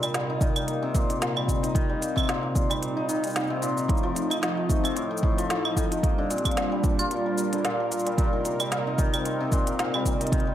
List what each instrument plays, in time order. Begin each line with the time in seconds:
Already playing: hammered dulcimer A#2 A#3 F4, analog synth pad C3 F4 A#4
0.03 hammered dulcimer G3, closed hi-hat, cabasa, claves
0.14 hammered dulcimer A#2, snare, closed hi-hat, cabasa
0.26 analog synth pad D#4, hammered dulcimer D#4
0.32 analog synth pad C4
0.41 hammered dulcimer D#3, kick, cabasa
0.56 hammered dulcimer G3, closed hi-hat, cabasa, claves
0.68 hammered dulcimer A#3, closed hi-hat, cabasa
0.83 hammered dulcimer C3
0.95 hammered dulcimer A#2, kick, cabasa
1.09 hammered dulcimer D#3, closed hi-hat, cabasa
1.21 hammered dulcimer A#2, snare, closed hi-hat, cabasa
1.36 hammered dulcimer G3, claves
1.48 hammered dulcimer A#2, kick, closed hi-hat, cabasa
1.63 hammered dulcimer D#4, closed hi-hat, cabasa
1.75 hammered dulcimer D#3, kick, closed hi-hat, cabasa
1.89 hammered dulcimer G3
2.01 hammered dulcimer A#3, closed hi-hat, cabasa
2.16 hammered dulcimer C3, kick, cabasa, claves
2.20 claves
2.25 claves
2.27 hammered dulcimer A#2, snare, closed hi-hat, cabasa, claves
2.43 hammered dulcimer D#3
2.55 hammered dulcimer A#2, kick, cabasa
2.70 hammered dulcimer G3, closed hi-hat, cabasa, claves
2.82 hammered dulcimer A#2, closed hi-hat, cabasa
2.97 hammered dulcimer D#4
3.09 hammered dulcimer D#3, cabasa
3.24 hammered dulcimer G3, closed hi-hat, cabasa
3.27 cabasa
3.30 cabasa
3.33 hammered dulcimer A#3, snare, closed hi-hat, cabasa
3.36 cabasa
3.47 hammered dulcimer C3, cabasa
3.62 hammered dulcimer A#2, cabasa
3.77 hammered dulcimer D#3, cabasa
3.88 hammered dulcimer A2, analog synth pad F3, kick, closed hi-hat
3.97 cabasa
4.03 hammered dulcimer F3
4.15 hammered dulcimer A2, closed hi-hat, cabasa
4.30 hammered dulcimer D#4, closed hi-hat, cabasa, claves
4.42 hammered dulcimer D#3, snare, closed hi-hat, cabasa
4.57 hammered dulcimer F3
4.69 hammered dulcimer A3, kick, cabasa
4.84 hammered dulcimer C3, analog synth pad A4, closed hi-hat, cabasa, claves
4.96 hammered dulcimer A2, closed hi-hat, cabasa
5.11 hammered dulcimer D#3
5.17 cabasa
5.23 hammered dulcimer A2, kick
5.38 hammered dulcimer F3, closed hi-hat, cabasa
5.50 hammered dulcimer A2, snare, closed hi-hat, cabasa
5.65 hammered dulcimer D#4, claves
5.77 hammered dulcimer D#3, kick, closed hi-hat, cabasa
5.91 hammered dulcimer F3, closed hi-hat, cabasa
6.03 analog synth pad G3, hammered dulcimer A#3, kick, closed hi-hat, cabasa
6.15 hammered dulcimer D3, analog synth pad D4
6.30 hammered dulcimer A#2, closed hi-hat, cabasa
6.38 closed hi-hat
6.45 hammered dulcimer F3, kick, closed hi-hat, cabasa, claves
6.51 closed hi-hat
6.57 hammered dulcimer A#2, snare, closed hi-hat, cabasa
6.72 hammered dulcimer G3
6.84 hammered dulcimer A#2, kick, cabasa
6.99 hammered dulcimer F4, analog synth pad F4 A#4, closed hi-hat, cabasa, claves
7.11 hammered dulcimer F3, closed hi-hat, cabasa
7.26 hammered dulcimer G3
7.38 hammered dulcimer A#3, cabasa
7.53 hammered dulcimer D3, closed hi-hat, cabasa
7.65 hammered dulcimer A#2, snare, closed hi-hat, cabasa
7.80 hammered dulcimer F3
7.92 hammered dulcimer A#2, closed hi-hat, cabasa
7.99 cabasa
8.07 hammered dulcimer G3, closed hi-hat
8.18 hammered dulcimer A#2, analog synth pad C3, kick, closed hi-hat, cabasa
8.33 hammered dulcimer D#3
8.45 hammered dulcimer A#2, closed hi-hat, cabasa
8.60 hammered dulcimer G3, closed hi-hat, cabasa, claves
8.72 hammered dulcimer A#2, snare, closed hi-hat, cabasa
8.87 hammered dulcimer D#4
8.98 hammered dulcimer D#3, analog synth pad C4, kick, cabasa
9.14 hammered dulcimer G3, closed hi-hat, cabasa, claves
9.25 hammered dulcimer C4, closed hi-hat, cabasa
9.34 analog synth pad D#4
9.41 hammered dulcimer C3
9.52 hammered dulcimer A#2, kick, cabasa
9.67 hammered dulcimer D#3, closed hi-hat, cabasa
9.79 hammered dulcimer A#2, snare, closed hi-hat, cabasa
9.94 hammered dulcimer G3, claves
10.05 hammered dulcimer A#2, kick, closed hi-hat, cabasa
10.21 hammered dulcimer D#4, closed hi-hat, cabasa
10.27 closed hi-hat
10.32 hammered dulcimer D#3, kick, closed hi-hat, cabasa
10.40 closed hi-hat
10.47 hammered dulcimer G3